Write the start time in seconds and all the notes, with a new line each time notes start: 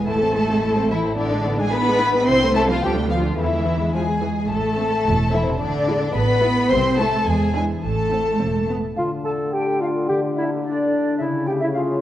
0.06 A1 A2 A3 E4 A4 A5
0.20 C4 A4
0.34 A3 C4 E4
0.49 C4 A4
0.62 A3 E4 A4
0.76 C4 A4
0.90 E3 A3 E4 E5
1.03 C4 A4
1.16 A2 D3 B3 D4 E4 D5
1.31 G#3 D4
1.44 B3 D4 E4
1.58 G#3 D4 G#4 G#5
1.72 B3 E4 G#4 B4 B5
1.87 G#3 D4
1.99 B3 E4
2.13 G#3 D4
2.27 C2 C3 C4 E4 C5 C6
2.40 A3 C4
2.55 A3 C4 E4 A4 A5
2.69 F3 A3 C4 F4 F5
2.82 D2 D3 F3 G3 B3 G4 G5
2.96 A3 D4
3.09 F3 B3 F4 A4 F5
3.23 A3 D4
3.37 E2 E3 B3 E4 E5
3.50 G#3 E4
3.66 E3 B3 E4
3.80 G#3 E4
3.94 F3 G#3 G#4 B4 G#5
4.21 E3 G#4
4.50 A1 A2 A3 A4 A5
4.78 A3 C4
5.06 E1 A4
5.33 E3 A3 C4 E4 E5
5.47 C3 C4 C5
5.58 A1 A2 D3 D4 D5
5.89 G#3 B3 E4
6.15 A1 B3 G#4 B4 B5
6.43 G#3 E4
6.70 C2 C3 C4 C5 C6
6.98 A3 E4 A4 A5
7.26 E2 E3 G#3 G#4 G#5
7.54 G#3 D4 E4 G#4 B4 G#5
7.82 A1 A2 A3 A4 A5
8.12 C4 E4
8.40 E1 C4 A4
8.69 B3 E4
8.96 D3 F4 F5
9.24 A3 A4 A5
9.51 G4 A4 G5
9.80 F4 F5
10.08 D3 G4 G5
10.36 A#3 E4 E5
10.63 D4 G4 D5
10.92 E4
11.18 C#3 E4 E5
11.46 A3 G4 G5
11.59 E5
11.63 E4
11.73 F4 G4 F5